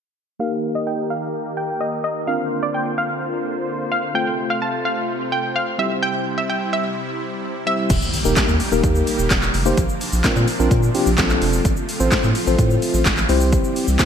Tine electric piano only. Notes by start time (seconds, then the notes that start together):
0.39 A#3 D#4 G4 A#4
2.27 C4 D4 F4 A#4
4.14 A3 C4 F4 A4
5.78 G3 C4 E4 G4
7.66 G3 C4 E4 G4
8.25 A#3 D#4 G4 A#4
8.72 A#3 D#4 G4 A#4
9.66 A#3 D#4 G4 C5
10.24 C4 D4 F4 A#4
10.59 C4 D4 F4 A#4
10.94 C4 D4 F4 G4
11.18 C4 D4 F4 A4
12.00 C4 F4 A4 C5
12.47 C4 F4 A4 C5
13.29 C4 E4 G4 C5
13.99 C4 E4 G4 C5